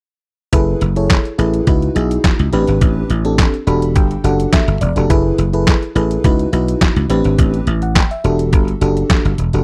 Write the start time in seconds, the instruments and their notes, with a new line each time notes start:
0.53 slap bass F#1, fm electric piano E4 G#4 A4 B4, kick, closed hi-hat
0.81 slap bass F#1, closed hi-hat
0.96 fm electric piano E4 G#4 A4 C#5, closed hi-hat
1.10 kick, snare, clap, closed hi-hat
1.25 closed hi-hat
1.38 slap bass A1, fm electric piano E4 G#4 A4 B4, closed hi-hat
1.54 closed hi-hat
1.67 slap bass C#2, fm electric piano D#4 E4 F#4 B4, kick, closed hi-hat
1.82 closed hi-hat
1.95 slap bass B1, fm electric piano D#4 E4 F#4 G#4, closed hi-hat
2.11 closed hi-hat
2.24 kick, snare, clap, closed hi-hat
2.39 slap bass C#2, closed hi-hat
2.52 slap bass A1, fm electric piano C4 D4 G4 B4, closed hi-hat
2.67 slap bass G#1, closed hi-hat
2.81 slap bass A1, kick, closed hi-hat
3.10 slap bass A1, closed hi-hat
3.25 fm electric piano C4 D4 G4 A4, closed hi-hat
3.38 kick, snare, clap, closed hi-hat
3.54 closed hi-hat
3.67 slap bass E1, fm electric piano D4 F#4 G4 A4 B5, closed hi-hat
3.82 closed hi-hat
3.96 slap bass G1, fm electric piano G5, kick, closed hi-hat
4.11 closed hi-hat
4.24 slap bass F#1, fm electric piano D4 F#4 G4 A4 F#5, closed hi-hat
4.40 closed hi-hat
4.53 fm electric piano E5, kick, snare, clap, closed hi-hat
4.68 slap bass G1, closed hi-hat
4.81 slap bass E1, fm electric piano D5, closed hi-hat
4.96 slap bass F1, fm electric piano D4 F#4 G4 A4, closed hi-hat
5.10 slap bass F#1, fm electric piano E4 G#4 A4 B4, kick, closed hi-hat
5.38 slap bass F#1, closed hi-hat
5.53 fm electric piano E4 G#4 A4 B4, closed hi-hat
5.67 kick, snare, clap, closed hi-hat
5.83 closed hi-hat
5.95 slap bass A1, fm electric piano E4 G#4 A4 B4, closed hi-hat
6.11 closed hi-hat
6.24 slap bass C#2, fm electric piano D#4 E4 F#4 B4, kick, closed hi-hat
6.39 closed hi-hat
6.52 slap bass B1, fm electric piano D#4 E4 F#4 B4, closed hi-hat
6.68 closed hi-hat
6.81 kick, snare, clap, closed hi-hat
6.96 slap bass C#2, closed hi-hat
7.10 slap bass A1, fm electric piano C4 D4 G4 B4, closed hi-hat
7.24 slap bass G#1, closed hi-hat
7.38 slap bass A1, kick, closed hi-hat
7.54 closed hi-hat
7.67 slap bass A1, closed hi-hat
7.82 fm electric piano F#5, closed hi-hat
7.95 fm electric piano G5, kick, snare, clap, closed hi-hat
8.11 fm electric piano E5, closed hi-hat
8.24 slap bass E1, fm electric piano D4 F#4 G4 A4, closed hi-hat
8.39 closed hi-hat
8.53 slap bass G1, kick, closed hi-hat
8.68 closed hi-hat
8.81 slap bass F#1, fm electric piano D4 F#4 G4 A4, closed hi-hat
8.97 closed hi-hat
9.10 kick, snare, clap, closed hi-hat
9.25 slap bass G1, closed hi-hat
9.38 slap bass E1, closed hi-hat
9.53 slap bass F1, fm electric piano D4 F#4 G4 A4, closed hi-hat